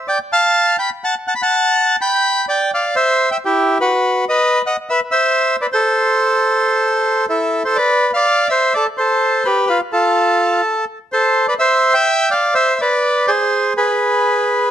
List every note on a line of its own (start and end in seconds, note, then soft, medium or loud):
0.08 0.18 D5 medium
0.08 0.19 G5 medium
0.33 0.76 F5 medium
0.33 0.76 A5 medium
0.79 0.89 G5 medium
0.79 0.90 B5 medium
1.04 1.15 F#5 medium
1.04 1.15 A5 medium
1.28 1.34 F#5 medium
1.28 1.34 A5 medium
1.35 1.41 B5 medium
1.42 1.96 F#5 medium
1.42 1.96 A5 loud
2.01 2.45 G5 medium
2.01 2.45 B5 loud
2.49 2.71 D5 medium
2.49 2.71 G5 medium
2.74 2.95 D5 medium
2.74 2.95 F5 medium
2.96 3.29 C5 medium
2.96 3.31 E5 loud
3.31 3.37 E5 medium
3.31 3.37 G5 medium
3.45 3.78 E4 medium
3.45 3.78 G4 medium
3.81 4.25 F#4 medium
3.81 4.25 B4 medium
4.29 4.62 B4 medium
4.29 4.62 D#5 loud
4.66 4.77 D#5 medium
4.66 4.76 F#5 medium
4.90 5.01 B4 medium
4.90 5.00 E5 medium
5.11 5.56 C5 medium
5.11 5.56 E5 medium
5.61 5.67 B4 medium
5.61 5.66 D5 medium
5.72 7.26 A4 medium
5.72 7.25 C5 medium
7.29 7.63 E4 medium
7.29 7.63 A4 medium
7.65 7.77 A4 medium
7.65 7.77 C5 medium
7.76 8.11 B4 medium
7.76 8.10 D5 loud
8.14 8.49 D5 medium
8.14 8.47 F5 loud
8.49 8.73 C5 medium
8.49 8.74 E5 medium
8.74 8.87 A4 medium
8.74 8.85 D5 medium
8.97 9.43 A4 medium
8.97 9.47 C5 medium
9.45 9.68 G4 medium
9.45 9.65 B4 medium
9.67 9.80 F4 medium
9.67 9.78 B4 medium
9.93 10.61 F4 medium
9.93 10.85 A4 medium
11.12 11.47 A4 medium
11.12 11.46 C5 medium
11.48 11.54 B4 medium
11.48 11.54 D5 medium
11.59 11.94 C5 medium
11.59 11.93 E5 loud
11.94 12.29 E5 medium
11.94 12.33 G5 loud
12.31 12.54 D5 medium
12.31 12.54 F5 medium
12.54 12.78 C5 medium
12.54 12.81 E5 loud
12.81 13.26 B4 medium
12.81 13.31 D5 medium
13.27 13.74 G#4 medium
13.27 13.73 C5 medium
13.77 14.70 G#4 medium
13.77 14.70 B4 medium